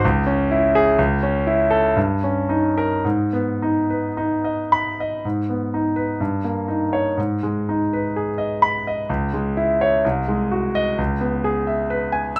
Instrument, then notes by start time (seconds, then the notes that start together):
grand piano
0.05 C#2
0.27 C#4
0.51 E4
0.75 G#4
0.98 C#2
1.23 C#4
1.47 E4
1.70 A4
1.96 G2
2.24 C#4
2.49 D#4
2.78 A#4
3.05 G#2
3.33 B3
3.62 D#4
3.90 B4
4.17 D#4
4.44 D#5
4.72 B5
5.00 D#5
5.25 G#2
5.50 B3
5.74 D#4
5.96 B4
6.21 G2
6.44 A#3
6.68 D#4
6.93 C#5
7.17 G#2
7.43 G#3
7.69 D#4
7.93 B4
8.16 G#4
8.38 D#5
8.62 B5
8.87 D#5
9.09 C#2
9.33 G#3
9.57 E4
9.81 C#5
10.05 C2
10.28 G#3
10.52 F#4
10.75 D#5
10.98 C#2
11.21 B3
11.44 G#4
11.67 E5
11.90 B4
12.12 G#5
12.36 E6